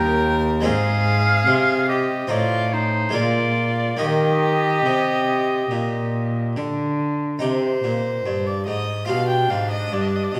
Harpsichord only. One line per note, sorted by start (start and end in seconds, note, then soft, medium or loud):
0.00 0.61 D#2 medium
0.00 0.59 A#3 medium
0.00 0.60 D#4 medium
0.61 2.24 G#3 medium
0.61 2.25 C4 medium
0.61 2.26 D#4 medium
0.65 1.44 G#2 medium
1.47 2.26 C3 medium
2.27 3.10 A2 medium
2.27 3.10 C4 soft
2.27 3.11 D#4 medium
3.09 3.94 G#3 soft
3.09 3.95 A#3 soft
3.09 3.96 F4 medium
3.14 3.95 A#2 soft
3.97 4.82 D#3 medium
3.97 4.82 A#3 medium
3.97 7.37 D#4 medium
4.86 5.67 C3 medium
5.71 6.52 A#2 medium
6.57 7.38 D3 medium
7.39 7.80 C3 soft
7.39 9.03 D#4 soft
7.39 9.04 G4 soft
7.84 8.22 A#2 soft
8.26 8.63 G2 soft
8.67 9.05 G#2 soft
9.06 9.47 B2 soft
9.06 10.40 F4 soft
9.06 10.40 G4 soft
9.50 9.89 G#2 soft
9.92 10.30 G2 soft
10.35 10.40 B2 soft